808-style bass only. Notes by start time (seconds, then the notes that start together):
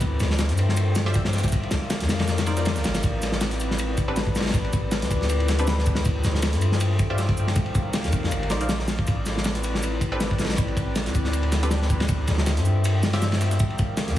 0.01 D2
0.20 D2
0.49 G2
1.52 C2
1.71 C2
2.01 F2
2.76 C2
2.84 G1
3.04 A1
4.54 A1
4.73 A1
5.02 D2
6.06 D2
6.24 D2
6.53 G2
7.56 C2
7.75 C2
8.04 F2
8.31 G1
8.50 A#1
9.08 A1
10.58 A1
10.77 A1
11.06 D2
12.09 D2
12.28 D2
12.57 G2
13.60 C2
13.79 C2
14.08 F2